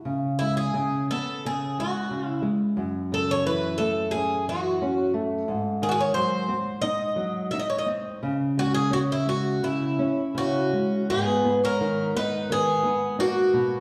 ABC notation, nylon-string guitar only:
X:1
M:4/4
L:1/8
Q:1/4=87
K:C#m
V:1 name="Nylon-string guitar" clef=bass
C, G, C, B, C, G, C, G, | F,, C, E, A, C E, C A, | G,, D, F, ^B, D F, D B, | C, G, C G, C, C C, G, |
[K:G#m] G,, B, D, B, D, B, D B,, |]